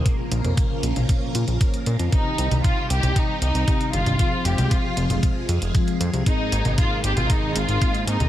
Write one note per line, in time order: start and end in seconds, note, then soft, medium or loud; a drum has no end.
0.00 2.09 A#3 medium
0.05 1.58 A#2 medium
0.05 2.10 C#3 medium
0.05 2.10 F3 medium
0.05 1.58 A#3 medium
0.05 1.58 C#4 medium
0.05 2.10 F4 medium
0.05 1.58 F4 medium
0.05 2.10 A#4 medium
0.05 1.58 A#4 medium
0.05 kick loud
0.05 closed hi-hat medium
0.32 0.42 A#1 loud
0.32 closed hi-hat medium
0.45 0.55 F2 medium
0.45 closed hi-hat soft
0.45 high conga medium
0.57 kick loud
0.57 closed hi-hat medium
0.83 0.94 A#1 medium
0.83 closed hi-hat medium
0.96 1.06 A#1 medium
0.96 closed hi-hat soft
0.96 high conga medium
1.09 kick loud
1.09 closed hi-hat medium
1.35 1.45 A#2 medium
1.35 closed hi-hat medium
1.48 1.58 A#1 medium
1.48 closed hi-hat soft
1.61 kick loud
1.61 closed hi-hat medium
1.74 closed hi-hat soft
1.86 1.97 A#2 medium
1.86 closed hi-hat medium
1.99 2.10 F2 medium
1.99 closed hi-hat soft
2.12 6.22 C3 medium
2.12 3.65 C3 medium
2.12 4.17 D#3 medium
2.12 4.17 G3 medium
2.12 3.65 C4 medium
2.12 4.17 D#4 medium
2.12 3.65 D#4 medium
2.12 2.61 D#4 medium
2.12 4.17 G4 medium
2.12 3.65 G4 medium
2.12 3.65 C5 medium
2.12 kick loud
2.12 closed hi-hat medium
2.38 2.49 C2 medium
2.38 closed hi-hat medium
2.51 2.62 C2 medium
2.51 closed hi-hat soft
2.51 high conga medium
2.64 2.90 F4 medium
2.64 kick loud
2.64 closed hi-hat medium
2.90 3.00 C2 medium
2.90 3.14 G4 medium
2.90 closed hi-hat medium
3.03 3.13 C2 medium
3.03 closed hi-hat soft
3.03 high conga medium
3.16 3.41 D#4 medium
3.16 kick loud
3.16 closed hi-hat medium
3.42 3.52 C2 medium
3.42 3.90 D#4 medium
3.42 closed hi-hat medium
3.55 3.65 C2 medium
3.55 closed hi-hat soft
3.68 4.16 C3 medium
3.68 4.16 C4 medium
3.68 4.16 D#4 medium
3.68 4.16 G4 medium
3.68 4.16 F5 loud
3.68 kick loud
3.68 closed hi-hat medium
3.81 closed hi-hat soft
3.93 4.04 G1 loud
3.93 4.46 F4 medium
3.93 closed hi-hat medium
4.06 4.17 G1 medium
4.06 closed hi-hat soft
4.06 high conga medium
4.19 6.24 F3 medium
4.19 5.72 F3 medium
4.19 8.29 G#3 medium
4.19 5.72 C4 medium
4.19 6.24 F4 medium
4.19 5.72 F4 medium
4.19 8.29 G#4 medium
4.19 5.72 G#4 medium
4.19 5.72 C5 medium
4.19 kick loud
4.19 closed hi-hat medium
4.45 4.55 F1 medium
4.45 4.71 G4 medium
4.45 closed hi-hat medium
4.58 4.68 C2 medium
4.58 closed hi-hat soft
4.58 high conga medium
4.71 5.23 F4 medium
4.71 kick loud
4.71 closed hi-hat medium
4.97 5.07 F1 medium
4.97 closed hi-hat medium
5.10 5.20 F1 medium
5.10 closed hi-hat soft
5.10 high conga medium
5.23 kick loud
5.23 closed hi-hat medium
5.49 5.59 F2 medium
5.49 closed hi-hat medium
5.62 5.72 F1 medium
5.62 closed hi-hat soft
5.75 6.23 F3 medium
5.75 6.23 C4 medium
5.75 6.23 F4 medium
5.75 6.23 G#4 medium
5.75 6.23 F5 medium
5.75 kick loud
5.75 closed hi-hat medium
5.88 closed hi-hat soft
6.00 6.11 F2 medium
6.00 closed hi-hat medium
6.13 6.24 C2 medium
6.13 closed hi-hat soft
6.26 7.79 G#2 medium
6.26 8.29 D#3 medium
6.26 8.29 A#3 medium
6.26 8.29 C4 medium
6.26 7.79 C4 medium
6.26 6.75 D#4 loud
6.26 7.79 D#4 medium
6.26 7.79 G#4 medium
6.26 7.79 A#4 medium
6.26 kick loud
6.26 closed hi-hat medium
6.52 6.62 G#1 medium
6.52 closed hi-hat medium
6.65 6.75 G#1 medium
6.65 closed hi-hat soft
6.65 high conga medium
6.78 7.04 F4 medium
6.78 kick loud
6.78 closed hi-hat medium
7.04 7.14 G#1 medium
7.04 7.16 G4 medium
7.04 closed hi-hat medium
7.17 7.27 G#1 medium
7.17 7.29 F4 loud
7.17 closed hi-hat medium
7.17 high conga medium
7.30 7.56 D#4 loud
7.30 kick loud
7.30 closed hi-hat medium
7.56 7.66 G#1 medium
7.56 8.08 F4 loud
7.56 closed hi-hat medium
7.69 7.79 G#1 medium
7.69 closed hi-hat soft
7.82 8.29 G#2 medium
7.82 8.29 C4 medium
7.82 8.29 D#4 medium
7.82 8.29 G#4 medium
7.82 8.29 D#5 loud
7.82 kick loud
7.82 closed hi-hat medium
7.95 closed hi-hat soft
8.07 8.18 G#2 medium
8.07 8.29 D#4 medium
8.07 closed hi-hat medium
8.20 8.29 D#2 medium
8.20 closed hi-hat soft
8.20 high conga medium